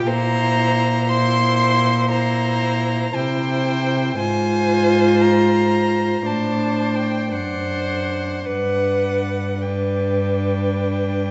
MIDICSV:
0, 0, Header, 1, 5, 480
1, 0, Start_track
1, 0, Tempo, 1023891
1, 40, Time_signature, 4, 2, 24, 8
1, 2441, Tempo, 1054482
1, 3401, Tempo, 1149425
1, 5069, End_track
2, 0, Start_track
2, 0, Title_t, "Violin"
2, 0, Program_c, 0, 40
2, 33, Note_on_c, 0, 82, 126
2, 510, Note_on_c, 0, 84, 125
2, 517, Note_off_c, 0, 82, 0
2, 988, Note_off_c, 0, 84, 0
2, 990, Note_on_c, 0, 82, 117
2, 1478, Note_on_c, 0, 79, 109
2, 1485, Note_off_c, 0, 82, 0
2, 1960, Note_off_c, 0, 79, 0
2, 1962, Note_on_c, 0, 80, 119
2, 2445, Note_on_c, 0, 82, 107
2, 2452, Note_off_c, 0, 80, 0
2, 2918, Note_on_c, 0, 81, 89
2, 2925, Note_off_c, 0, 82, 0
2, 3236, Note_on_c, 0, 79, 88
2, 3243, Note_off_c, 0, 81, 0
2, 3401, Note_on_c, 0, 78, 85
2, 3407, Note_off_c, 0, 79, 0
2, 3874, Note_off_c, 0, 78, 0
2, 3877, Note_on_c, 0, 78, 88
2, 4363, Note_on_c, 0, 79, 69
2, 4370, Note_off_c, 0, 78, 0
2, 5069, Note_off_c, 0, 79, 0
2, 5069, End_track
3, 0, Start_track
3, 0, Title_t, "Violin"
3, 0, Program_c, 1, 40
3, 34, Note_on_c, 1, 72, 89
3, 507, Note_off_c, 1, 72, 0
3, 510, Note_on_c, 1, 72, 89
3, 983, Note_off_c, 1, 72, 0
3, 988, Note_on_c, 1, 72, 82
3, 1466, Note_off_c, 1, 72, 0
3, 1473, Note_on_c, 1, 72, 80
3, 1949, Note_off_c, 1, 72, 0
3, 1959, Note_on_c, 1, 72, 85
3, 2897, Note_off_c, 1, 72, 0
3, 2919, Note_on_c, 1, 72, 70
3, 3394, Note_off_c, 1, 72, 0
3, 3401, Note_on_c, 1, 72, 74
3, 3877, Note_on_c, 1, 71, 67
3, 3883, Note_off_c, 1, 72, 0
3, 4359, Note_off_c, 1, 71, 0
3, 4361, Note_on_c, 1, 71, 66
3, 5069, Note_off_c, 1, 71, 0
3, 5069, End_track
4, 0, Start_track
4, 0, Title_t, "Viola"
4, 0, Program_c, 2, 41
4, 0, Note_on_c, 2, 65, 72
4, 42, Note_on_c, 2, 64, 75
4, 49, Note_off_c, 2, 65, 0
4, 510, Note_off_c, 2, 64, 0
4, 513, Note_on_c, 2, 64, 83
4, 985, Note_off_c, 2, 64, 0
4, 996, Note_on_c, 2, 64, 79
4, 1470, Note_off_c, 2, 64, 0
4, 1480, Note_on_c, 2, 64, 73
4, 1953, Note_off_c, 2, 64, 0
4, 1964, Note_on_c, 2, 65, 80
4, 2899, Note_off_c, 2, 65, 0
4, 2922, Note_on_c, 2, 62, 76
4, 3395, Note_off_c, 2, 62, 0
4, 3406, Note_on_c, 2, 62, 63
4, 3869, Note_off_c, 2, 62, 0
4, 3880, Note_on_c, 2, 62, 62
4, 4351, Note_off_c, 2, 62, 0
4, 4359, Note_on_c, 2, 62, 71
4, 5069, Note_off_c, 2, 62, 0
4, 5069, End_track
5, 0, Start_track
5, 0, Title_t, "Cello"
5, 0, Program_c, 3, 42
5, 33, Note_on_c, 3, 46, 90
5, 1457, Note_off_c, 3, 46, 0
5, 1478, Note_on_c, 3, 48, 74
5, 1951, Note_off_c, 3, 48, 0
5, 1963, Note_on_c, 3, 44, 88
5, 2899, Note_off_c, 3, 44, 0
5, 2918, Note_on_c, 3, 45, 75
5, 3405, Note_on_c, 3, 42, 60
5, 3412, Note_off_c, 3, 45, 0
5, 3878, Note_on_c, 3, 43, 73
5, 3884, Note_off_c, 3, 42, 0
5, 5069, Note_off_c, 3, 43, 0
5, 5069, End_track
0, 0, End_of_file